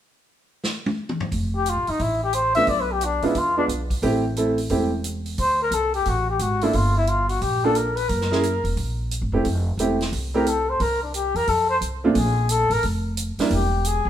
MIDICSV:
0, 0, Header, 1, 6, 480
1, 0, Start_track
1, 0, Key_signature, -1, "major"
1, 0, Tempo, 338792
1, 1860, Time_signature, 4, 2, 24, 8
1, 19975, End_track
2, 0, Start_track
2, 0, Title_t, "Trumpet"
2, 0, Program_c, 0, 56
2, 2213, Note_on_c, 0, 67, 69
2, 2402, Note_on_c, 0, 65, 66
2, 2423, Note_off_c, 0, 67, 0
2, 2687, Note_on_c, 0, 63, 78
2, 2708, Note_off_c, 0, 65, 0
2, 2852, Note_on_c, 0, 64, 66
2, 2874, Note_off_c, 0, 63, 0
2, 3142, Note_off_c, 0, 64, 0
2, 3164, Note_on_c, 0, 67, 79
2, 3318, Note_on_c, 0, 72, 77
2, 3339, Note_off_c, 0, 67, 0
2, 3605, Note_off_c, 0, 72, 0
2, 3613, Note_on_c, 0, 76, 97
2, 3806, Note_on_c, 0, 74, 81
2, 3827, Note_off_c, 0, 76, 0
2, 3974, Note_on_c, 0, 71, 67
2, 3996, Note_off_c, 0, 74, 0
2, 4136, Note_on_c, 0, 67, 74
2, 4157, Note_off_c, 0, 71, 0
2, 4315, Note_on_c, 0, 62, 64
2, 4336, Note_off_c, 0, 67, 0
2, 4614, Note_on_c, 0, 64, 75
2, 4635, Note_off_c, 0, 62, 0
2, 4782, Note_on_c, 0, 65, 74
2, 4803, Note_off_c, 0, 64, 0
2, 5061, Note_off_c, 0, 65, 0
2, 5070, Note_on_c, 0, 62, 73
2, 5169, Note_off_c, 0, 62, 0
2, 7648, Note_on_c, 0, 72, 73
2, 7921, Note_off_c, 0, 72, 0
2, 7959, Note_on_c, 0, 70, 77
2, 8129, Note_on_c, 0, 69, 73
2, 8150, Note_off_c, 0, 70, 0
2, 8415, Note_off_c, 0, 69, 0
2, 8423, Note_on_c, 0, 67, 80
2, 8624, Note_on_c, 0, 66, 82
2, 8645, Note_off_c, 0, 67, 0
2, 8910, Note_off_c, 0, 66, 0
2, 8923, Note_on_c, 0, 67, 79
2, 9088, Note_on_c, 0, 66, 70
2, 9109, Note_off_c, 0, 67, 0
2, 9397, Note_on_c, 0, 64, 70
2, 9418, Note_off_c, 0, 66, 0
2, 9568, Note_on_c, 0, 65, 72
2, 9589, Note_off_c, 0, 64, 0
2, 9861, Note_off_c, 0, 65, 0
2, 9877, Note_on_c, 0, 64, 74
2, 10037, Note_on_c, 0, 65, 69
2, 10058, Note_off_c, 0, 64, 0
2, 10311, Note_off_c, 0, 65, 0
2, 10319, Note_on_c, 0, 66, 70
2, 10517, Note_on_c, 0, 67, 78
2, 10538, Note_off_c, 0, 66, 0
2, 10835, Note_on_c, 0, 69, 80
2, 10856, Note_off_c, 0, 67, 0
2, 10995, Note_on_c, 0, 70, 67
2, 11017, Note_off_c, 0, 69, 0
2, 11277, Note_on_c, 0, 71, 92
2, 11298, Note_off_c, 0, 70, 0
2, 11455, Note_on_c, 0, 70, 74
2, 11476, Note_off_c, 0, 71, 0
2, 12419, Note_off_c, 0, 70, 0
2, 14664, Note_on_c, 0, 70, 73
2, 14851, Note_on_c, 0, 69, 65
2, 14872, Note_off_c, 0, 70, 0
2, 15149, Note_on_c, 0, 72, 83
2, 15171, Note_off_c, 0, 69, 0
2, 15320, Note_on_c, 0, 70, 74
2, 15341, Note_off_c, 0, 72, 0
2, 15615, Note_off_c, 0, 70, 0
2, 15628, Note_on_c, 0, 62, 42
2, 15792, Note_on_c, 0, 67, 61
2, 15814, Note_off_c, 0, 62, 0
2, 16097, Note_on_c, 0, 70, 84
2, 16118, Note_off_c, 0, 67, 0
2, 16278, Note_on_c, 0, 69, 70
2, 16299, Note_off_c, 0, 70, 0
2, 16560, Note_off_c, 0, 69, 0
2, 16569, Note_on_c, 0, 72, 80
2, 16673, Note_off_c, 0, 72, 0
2, 17229, Note_on_c, 0, 68, 72
2, 17717, Note_on_c, 0, 69, 82
2, 17738, Note_off_c, 0, 68, 0
2, 18023, Note_on_c, 0, 70, 84
2, 18044, Note_off_c, 0, 69, 0
2, 18188, Note_off_c, 0, 70, 0
2, 19185, Note_on_c, 0, 67, 64
2, 19651, Note_on_c, 0, 68, 69
2, 19672, Note_off_c, 0, 67, 0
2, 19936, Note_off_c, 0, 68, 0
2, 19975, End_track
3, 0, Start_track
3, 0, Title_t, "Upright piano"
3, 0, Program_c, 1, 0
3, 3629, Note_on_c, 1, 62, 54
3, 3630, Note_on_c, 1, 57, 58
3, 3631, Note_on_c, 1, 59, 54
3, 3639, Note_on_c, 1, 65, 64
3, 3777, Note_off_c, 1, 57, 0
3, 3777, Note_off_c, 1, 62, 0
3, 3778, Note_off_c, 1, 59, 0
3, 3782, Note_off_c, 1, 65, 0
3, 4572, Note_on_c, 1, 56, 60
3, 4580, Note_on_c, 1, 59, 52
3, 4581, Note_on_c, 1, 65, 66
3, 4583, Note_on_c, 1, 62, 52
3, 4729, Note_off_c, 1, 56, 0
3, 4733, Note_off_c, 1, 59, 0
3, 4734, Note_off_c, 1, 65, 0
3, 4735, Note_off_c, 1, 62, 0
3, 5060, Note_on_c, 1, 56, 55
3, 5066, Note_on_c, 1, 59, 51
3, 5066, Note_on_c, 1, 62, 48
3, 5068, Note_on_c, 1, 65, 62
3, 5213, Note_off_c, 1, 56, 0
3, 5216, Note_off_c, 1, 59, 0
3, 5217, Note_off_c, 1, 62, 0
3, 5218, Note_off_c, 1, 65, 0
3, 5703, Note_on_c, 1, 57, 63
3, 5709, Note_on_c, 1, 64, 58
3, 5710, Note_on_c, 1, 60, 62
3, 5711, Note_on_c, 1, 67, 72
3, 5979, Note_off_c, 1, 57, 0
3, 5982, Note_off_c, 1, 64, 0
3, 5983, Note_off_c, 1, 60, 0
3, 5983, Note_off_c, 1, 67, 0
3, 6192, Note_on_c, 1, 57, 51
3, 6198, Note_on_c, 1, 60, 50
3, 6201, Note_on_c, 1, 69, 61
3, 6202, Note_on_c, 1, 64, 49
3, 6464, Note_off_c, 1, 57, 0
3, 6466, Note_off_c, 1, 60, 0
3, 6468, Note_off_c, 1, 69, 0
3, 6469, Note_off_c, 1, 64, 0
3, 6656, Note_on_c, 1, 57, 53
3, 6667, Note_on_c, 1, 60, 54
3, 6669, Note_on_c, 1, 64, 52
3, 6673, Note_on_c, 1, 67, 56
3, 6936, Note_off_c, 1, 57, 0
3, 6941, Note_off_c, 1, 60, 0
3, 6942, Note_off_c, 1, 64, 0
3, 6944, Note_off_c, 1, 67, 0
3, 9383, Note_on_c, 1, 58, 58
3, 9389, Note_on_c, 1, 62, 58
3, 9391, Note_on_c, 1, 69, 62
3, 9392, Note_on_c, 1, 65, 54
3, 9535, Note_off_c, 1, 58, 0
3, 9538, Note_off_c, 1, 62, 0
3, 9539, Note_off_c, 1, 65, 0
3, 9539, Note_off_c, 1, 69, 0
3, 10826, Note_on_c, 1, 58, 63
3, 10828, Note_on_c, 1, 65, 60
3, 10831, Note_on_c, 1, 62, 64
3, 10838, Note_on_c, 1, 69, 74
3, 10976, Note_off_c, 1, 58, 0
3, 10977, Note_off_c, 1, 65, 0
3, 10978, Note_off_c, 1, 62, 0
3, 10982, Note_off_c, 1, 69, 0
3, 11777, Note_on_c, 1, 58, 59
3, 11780, Note_on_c, 1, 61, 51
3, 11781, Note_on_c, 1, 64, 54
3, 11792, Note_on_c, 1, 68, 65
3, 11931, Note_off_c, 1, 58, 0
3, 11933, Note_off_c, 1, 61, 0
3, 11933, Note_off_c, 1, 64, 0
3, 11939, Note_off_c, 1, 68, 0
3, 13223, Note_on_c, 1, 64, 47
3, 13224, Note_on_c, 1, 57, 59
3, 13225, Note_on_c, 1, 60, 54
3, 13234, Note_on_c, 1, 67, 61
3, 13373, Note_off_c, 1, 64, 0
3, 13374, Note_off_c, 1, 57, 0
3, 13374, Note_off_c, 1, 60, 0
3, 13379, Note_off_c, 1, 67, 0
3, 13878, Note_on_c, 1, 57, 59
3, 13882, Note_on_c, 1, 60, 52
3, 13885, Note_on_c, 1, 64, 47
3, 13886, Note_on_c, 1, 67, 63
3, 14144, Note_off_c, 1, 57, 0
3, 14146, Note_off_c, 1, 60, 0
3, 14148, Note_off_c, 1, 64, 0
3, 14148, Note_off_c, 1, 67, 0
3, 14653, Note_on_c, 1, 57, 61
3, 14656, Note_on_c, 1, 60, 61
3, 14660, Note_on_c, 1, 64, 54
3, 14667, Note_on_c, 1, 67, 67
3, 14808, Note_off_c, 1, 57, 0
3, 14809, Note_off_c, 1, 60, 0
3, 14811, Note_off_c, 1, 64, 0
3, 14815, Note_off_c, 1, 67, 0
3, 17058, Note_on_c, 1, 60, 55
3, 17061, Note_on_c, 1, 46, 62
3, 17061, Note_on_c, 1, 57, 58
3, 17069, Note_on_c, 1, 65, 74
3, 17072, Note_on_c, 1, 62, 59
3, 17209, Note_off_c, 1, 60, 0
3, 17211, Note_off_c, 1, 46, 0
3, 17211, Note_off_c, 1, 57, 0
3, 17215, Note_off_c, 1, 65, 0
3, 17216, Note_off_c, 1, 62, 0
3, 18981, Note_on_c, 1, 58, 61
3, 18983, Note_on_c, 1, 55, 64
3, 18984, Note_on_c, 1, 62, 61
3, 18987, Note_on_c, 1, 64, 60
3, 18990, Note_on_c, 1, 70, 71
3, 19129, Note_off_c, 1, 55, 0
3, 19129, Note_off_c, 1, 58, 0
3, 19130, Note_off_c, 1, 62, 0
3, 19131, Note_off_c, 1, 64, 0
3, 19133, Note_off_c, 1, 70, 0
3, 19975, End_track
4, 0, Start_track
4, 0, Title_t, "Upright bass"
4, 0, Program_c, 2, 32
4, 1861, Note_on_c, 2, 29, 75
4, 2458, Note_off_c, 2, 29, 0
4, 2497, Note_on_c, 2, 33, 55
4, 2648, Note_off_c, 2, 33, 0
4, 2664, Note_on_c, 2, 36, 59
4, 2812, Note_off_c, 2, 36, 0
4, 2824, Note_on_c, 2, 33, 75
4, 3737, Note_off_c, 2, 33, 0
4, 3781, Note_on_c, 2, 35, 81
4, 4513, Note_off_c, 2, 35, 0
4, 4567, Note_on_c, 2, 47, 66
4, 4732, Note_off_c, 2, 47, 0
4, 4743, Note_on_c, 2, 40, 69
4, 5191, Note_off_c, 2, 40, 0
4, 5214, Note_on_c, 2, 35, 65
4, 5667, Note_off_c, 2, 35, 0
4, 5698, Note_on_c, 2, 33, 82
4, 6614, Note_off_c, 2, 33, 0
4, 6660, Note_on_c, 2, 28, 80
4, 7575, Note_off_c, 2, 28, 0
4, 7622, Note_on_c, 2, 38, 79
4, 8071, Note_off_c, 2, 38, 0
4, 8092, Note_on_c, 2, 36, 74
4, 8545, Note_off_c, 2, 36, 0
4, 8585, Note_on_c, 2, 33, 76
4, 9032, Note_off_c, 2, 33, 0
4, 9059, Note_on_c, 2, 32, 71
4, 9509, Note_off_c, 2, 32, 0
4, 9544, Note_on_c, 2, 31, 82
4, 10457, Note_off_c, 2, 31, 0
4, 10505, Note_on_c, 2, 34, 78
4, 11416, Note_off_c, 2, 34, 0
4, 11466, Note_on_c, 2, 30, 81
4, 12195, Note_off_c, 2, 30, 0
4, 12238, Note_on_c, 2, 28, 63
4, 12406, Note_off_c, 2, 28, 0
4, 12425, Note_on_c, 2, 34, 74
4, 13019, Note_off_c, 2, 34, 0
4, 13056, Note_on_c, 2, 32, 66
4, 13197, Note_off_c, 2, 32, 0
4, 13205, Note_on_c, 2, 28, 67
4, 13362, Note_off_c, 2, 28, 0
4, 13385, Note_on_c, 2, 29, 75
4, 13830, Note_off_c, 2, 29, 0
4, 13848, Note_on_c, 2, 28, 72
4, 14301, Note_off_c, 2, 28, 0
4, 14343, Note_on_c, 2, 36, 73
4, 15254, Note_off_c, 2, 36, 0
4, 15302, Note_on_c, 2, 36, 81
4, 16031, Note_off_c, 2, 36, 0
4, 16073, Note_on_c, 2, 40, 62
4, 16242, Note_off_c, 2, 40, 0
4, 16258, Note_on_c, 2, 41, 69
4, 16705, Note_off_c, 2, 41, 0
4, 16732, Note_on_c, 2, 36, 65
4, 17182, Note_off_c, 2, 36, 0
4, 17217, Note_on_c, 2, 34, 86
4, 17947, Note_off_c, 2, 34, 0
4, 17993, Note_on_c, 2, 33, 71
4, 18160, Note_off_c, 2, 33, 0
4, 18178, Note_on_c, 2, 29, 79
4, 18906, Note_off_c, 2, 29, 0
4, 19133, Note_on_c, 2, 28, 87
4, 19862, Note_off_c, 2, 28, 0
4, 19907, Note_on_c, 2, 32, 69
4, 19975, Note_off_c, 2, 32, 0
4, 19975, End_track
5, 0, Start_track
5, 0, Title_t, "Muted upright bass strokes"
5, 18961, Note_on_c, 9, 29, 40
5, 19103, Note_off_c, 9, 29, 0
5, 19975, End_track
6, 0, Start_track
6, 0, Title_t, "Drums"
6, 901, Note_on_c, 9, 38, 63
6, 1043, Note_off_c, 9, 38, 0
6, 1222, Note_on_c, 9, 48, 74
6, 1364, Note_off_c, 9, 48, 0
6, 1547, Note_on_c, 9, 47, 76
6, 1689, Note_off_c, 9, 47, 0
6, 1706, Note_on_c, 9, 43, 92
6, 1848, Note_off_c, 9, 43, 0
6, 1868, Note_on_c, 9, 46, 39
6, 1869, Note_on_c, 9, 36, 31
6, 2010, Note_off_c, 9, 46, 0
6, 2011, Note_off_c, 9, 36, 0
6, 2348, Note_on_c, 9, 42, 48
6, 2490, Note_off_c, 9, 42, 0
6, 2651, Note_on_c, 9, 46, 32
6, 2793, Note_off_c, 9, 46, 0
6, 2826, Note_on_c, 9, 46, 41
6, 2828, Note_on_c, 9, 36, 31
6, 2967, Note_off_c, 9, 46, 0
6, 2970, Note_off_c, 9, 36, 0
6, 3298, Note_on_c, 9, 42, 47
6, 3440, Note_off_c, 9, 42, 0
6, 3608, Note_on_c, 9, 46, 34
6, 3750, Note_off_c, 9, 46, 0
6, 3780, Note_on_c, 9, 46, 43
6, 3786, Note_on_c, 9, 36, 32
6, 3922, Note_off_c, 9, 46, 0
6, 3928, Note_off_c, 9, 36, 0
6, 4262, Note_on_c, 9, 42, 49
6, 4404, Note_off_c, 9, 42, 0
6, 4567, Note_on_c, 9, 46, 32
6, 4709, Note_off_c, 9, 46, 0
6, 4744, Note_on_c, 9, 46, 44
6, 4747, Note_on_c, 9, 36, 32
6, 4885, Note_off_c, 9, 46, 0
6, 4889, Note_off_c, 9, 36, 0
6, 5230, Note_on_c, 9, 42, 48
6, 5372, Note_off_c, 9, 42, 0
6, 5532, Note_on_c, 9, 36, 40
6, 5533, Note_on_c, 9, 46, 37
6, 5673, Note_off_c, 9, 36, 0
6, 5675, Note_off_c, 9, 46, 0
6, 5704, Note_on_c, 9, 46, 43
6, 5706, Note_on_c, 9, 36, 33
6, 5846, Note_off_c, 9, 46, 0
6, 5848, Note_off_c, 9, 36, 0
6, 6184, Note_on_c, 9, 42, 47
6, 6326, Note_off_c, 9, 42, 0
6, 6486, Note_on_c, 9, 46, 36
6, 6628, Note_off_c, 9, 46, 0
6, 6652, Note_on_c, 9, 46, 43
6, 6664, Note_on_c, 9, 36, 30
6, 6794, Note_off_c, 9, 46, 0
6, 6805, Note_off_c, 9, 36, 0
6, 7141, Note_on_c, 9, 42, 47
6, 7283, Note_off_c, 9, 42, 0
6, 7447, Note_on_c, 9, 46, 35
6, 7589, Note_off_c, 9, 46, 0
6, 7621, Note_on_c, 9, 46, 45
6, 7626, Note_on_c, 9, 36, 30
6, 7763, Note_off_c, 9, 46, 0
6, 7768, Note_off_c, 9, 36, 0
6, 8098, Note_on_c, 9, 42, 48
6, 8240, Note_off_c, 9, 42, 0
6, 8413, Note_on_c, 9, 46, 33
6, 8554, Note_off_c, 9, 46, 0
6, 8580, Note_on_c, 9, 46, 43
6, 8588, Note_on_c, 9, 36, 31
6, 8721, Note_off_c, 9, 46, 0
6, 8729, Note_off_c, 9, 36, 0
6, 9057, Note_on_c, 9, 42, 48
6, 9199, Note_off_c, 9, 42, 0
6, 9370, Note_on_c, 9, 46, 36
6, 9511, Note_off_c, 9, 46, 0
6, 9538, Note_on_c, 9, 46, 41
6, 9547, Note_on_c, 9, 36, 30
6, 9680, Note_off_c, 9, 46, 0
6, 9689, Note_off_c, 9, 36, 0
6, 10021, Note_on_c, 9, 42, 48
6, 10163, Note_off_c, 9, 42, 0
6, 10331, Note_on_c, 9, 46, 32
6, 10472, Note_off_c, 9, 46, 0
6, 10507, Note_on_c, 9, 46, 44
6, 10510, Note_on_c, 9, 36, 32
6, 10648, Note_off_c, 9, 46, 0
6, 10651, Note_off_c, 9, 36, 0
6, 10980, Note_on_c, 9, 42, 49
6, 11121, Note_off_c, 9, 42, 0
6, 11289, Note_on_c, 9, 46, 36
6, 11431, Note_off_c, 9, 46, 0
6, 11465, Note_on_c, 9, 46, 41
6, 11468, Note_on_c, 9, 36, 32
6, 11607, Note_off_c, 9, 46, 0
6, 11610, Note_off_c, 9, 36, 0
6, 11632, Note_on_c, 9, 38, 30
6, 11774, Note_off_c, 9, 38, 0
6, 11788, Note_on_c, 9, 38, 42
6, 11930, Note_off_c, 9, 38, 0
6, 11950, Note_on_c, 9, 42, 50
6, 12092, Note_off_c, 9, 42, 0
6, 12250, Note_on_c, 9, 46, 34
6, 12391, Note_off_c, 9, 46, 0
6, 12426, Note_on_c, 9, 46, 42
6, 12429, Note_on_c, 9, 36, 33
6, 12568, Note_off_c, 9, 46, 0
6, 12570, Note_off_c, 9, 36, 0
6, 12910, Note_on_c, 9, 42, 50
6, 13052, Note_off_c, 9, 42, 0
6, 13385, Note_on_c, 9, 46, 42
6, 13387, Note_on_c, 9, 36, 33
6, 13527, Note_off_c, 9, 46, 0
6, 13529, Note_off_c, 9, 36, 0
6, 13868, Note_on_c, 9, 42, 48
6, 14009, Note_off_c, 9, 42, 0
6, 14176, Note_on_c, 9, 46, 34
6, 14181, Note_on_c, 9, 38, 40
6, 14317, Note_off_c, 9, 46, 0
6, 14323, Note_off_c, 9, 38, 0
6, 14348, Note_on_c, 9, 46, 44
6, 14349, Note_on_c, 9, 36, 33
6, 14490, Note_off_c, 9, 36, 0
6, 14490, Note_off_c, 9, 46, 0
6, 14827, Note_on_c, 9, 42, 47
6, 14968, Note_off_c, 9, 42, 0
6, 15300, Note_on_c, 9, 46, 42
6, 15303, Note_on_c, 9, 36, 33
6, 15442, Note_off_c, 9, 46, 0
6, 15445, Note_off_c, 9, 36, 0
6, 15783, Note_on_c, 9, 42, 49
6, 15924, Note_off_c, 9, 42, 0
6, 16089, Note_on_c, 9, 46, 33
6, 16230, Note_off_c, 9, 46, 0
6, 16258, Note_on_c, 9, 46, 43
6, 16262, Note_on_c, 9, 36, 33
6, 16400, Note_off_c, 9, 46, 0
6, 16404, Note_off_c, 9, 36, 0
6, 16740, Note_on_c, 9, 42, 45
6, 16882, Note_off_c, 9, 42, 0
6, 17214, Note_on_c, 9, 46, 50
6, 17221, Note_on_c, 9, 36, 35
6, 17355, Note_off_c, 9, 46, 0
6, 17363, Note_off_c, 9, 36, 0
6, 17694, Note_on_c, 9, 42, 57
6, 17836, Note_off_c, 9, 42, 0
6, 18001, Note_on_c, 9, 46, 38
6, 18142, Note_off_c, 9, 46, 0
6, 18174, Note_on_c, 9, 46, 47
6, 18181, Note_on_c, 9, 36, 33
6, 18316, Note_off_c, 9, 46, 0
6, 18323, Note_off_c, 9, 36, 0
6, 18660, Note_on_c, 9, 42, 56
6, 18801, Note_off_c, 9, 42, 0
6, 18966, Note_on_c, 9, 46, 41
6, 18972, Note_on_c, 9, 38, 35
6, 19108, Note_off_c, 9, 46, 0
6, 19114, Note_off_c, 9, 38, 0
6, 19135, Note_on_c, 9, 46, 47
6, 19141, Note_on_c, 9, 36, 33
6, 19276, Note_off_c, 9, 46, 0
6, 19283, Note_off_c, 9, 36, 0
6, 19616, Note_on_c, 9, 42, 59
6, 19758, Note_off_c, 9, 42, 0
6, 19975, End_track
0, 0, End_of_file